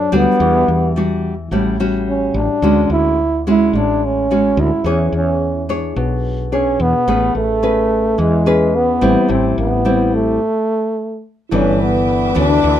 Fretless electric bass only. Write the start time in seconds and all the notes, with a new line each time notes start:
0.13 D2
0.40 E2
0.68 E2
1.51 A1
2.34 A1
2.62 D2
2.90 D2
3.73 A1
4.57 D2
4.84 E2
5.12 E2
5.96 B1
6.80 E2
7.08 A1
7.35 A1
8.19 E2
9.02 A1
9.29 A1
9.58 A1
11.52 G1
12.36 D2
12.64 D2